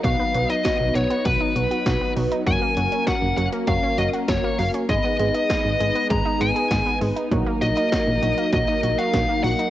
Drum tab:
HH |x-xxx-xxx-xxx-ox|x-xxx-xxx-xxx-ox|x-xxx-xxx-xxx-ox|x-xxx-xxx-xxx-ox|
SD |----o-------o---|----o-------o---|----o-------o---|----o-------o---|
BD |o---o---o---o---|o---o---o---o---|o---o---o---o---|o---o---o---o---|